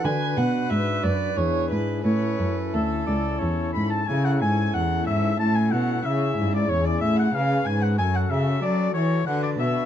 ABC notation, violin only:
X:1
M:3/4
L:1/16
Q:1/4=92
K:A
V:1 name="Violin"
g2 f2 e2 d2 c2 B2 | B4 A6 b a | g f g2 f2 e2 a g f2 | e3 d c d e f ^e2 g f |
g f e2 d2 c2 f d e2 |]